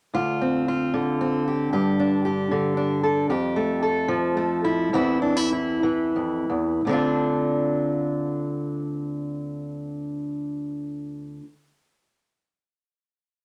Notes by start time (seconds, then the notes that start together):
0.14 D2 F4
0.42 C4
0.68 F4
0.94 D3
1.21 C4
1.48 G4
1.73 G2 G4
2.00 D4
2.25 G4
2.51 D3
2.77 D4
3.03 A4
3.30 F2 G4
3.56 A3
3.83 A4
4.08 F3
4.37 A3
4.64 E4
4.93 E2 E3 C4 E4
5.22 D4
5.37 E4
5.52 E4
5.83 E3
6.16 F2
6.50 E2
6.85 D2 D3
6.89 C4 D4 F4